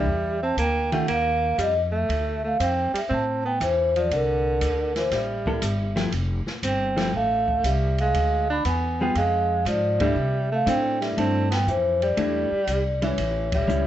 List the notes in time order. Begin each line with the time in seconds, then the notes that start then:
Already playing: G3 E5
0.06 E2
0.43 C4 A5
0.57 D2 A#3 G5, kick, hi-hat pedal, ride
0.92 D#3 A3 C#4 F4 G4 F#5, ride
1.08 D#2 A#3 F5, kick, ride
1.58 F2 G3 D#5, kick, hi-hat pedal, ride
1.92 A3 E5
2.09 D2, kick, ride
2.44 A3 F5
2.60 F2 C4 G5, kick, hi-hat pedal, ride
2.93 G3, muted upright bass stroke, ride
2.98 E5
3.09 A2 C4, kick
3.13 A5
3.45 B3 G5
3.60 E2 E3 C5, kick, hi-hat pedal, ride
3.96 F3 D5, ride
4.11 C2 D3, kick, ride
4.15 A#4
4.61 D2, kick, hi-hat pedal, ride
4.95 E3 C5, snare, ride
5.11 A1 G3 E5, kick, snare, ride
5.46 A#3 E4 A4, kick
5.62 G1, kick, hi-hat pedal, ride
5.96 F3 A3 E4 G4, snare, ride
6.12 F1, kick, ride
6.46 muted upright bass stroke, snare
6.63 G1 C4, kick, hi-hat pedal, ride
6.68 G5
6.96 F3 A3 E4 G4, snare, ride
7.13 A1 A3 F5, kick
7.48 kick
7.63 C2 G3 E5, kick, hi-hat pedal, ride
7.98 G#3 F5, ride
8.14 D2, kick, ride
8.50 D4 B5
8.65 E2 B3 G#5, kick, hi-hat pedal, ride
9.00 G3 B3 F4 G#4 G5
9.15 F2 G#3 F5, kick, ride
9.65 G#2 F3 D5, kick, hi-hat pedal, ride
10.00 G3 A3 D4 E4, kick, ride
10.04 E5
10.16 C3
10.52 A3 F5
10.66 A2 A3 C4 D4 E4, kick, hi-hat pedal, ride
11.01 G3 E5, snare, ride
11.17 G2 A3 C4 D4 E4 A5, kick, ride
11.51 B3 G5, snare, ride
11.67 F2 E3 C5, kick, hi-hat pedal
12.02 G3 D5, ride
12.17 E2 A3 D4 E4, kick, ride
12.51 muted upright bass stroke
12.67 C2, kick, hi-hat pedal, ride
13.02 E3 G3 C#4 E4, ride
13.17 A1, kick, ride
13.52 G3 E5, kick, ride
13.67 C#2 G3 C#4 E4, hi-hat pedal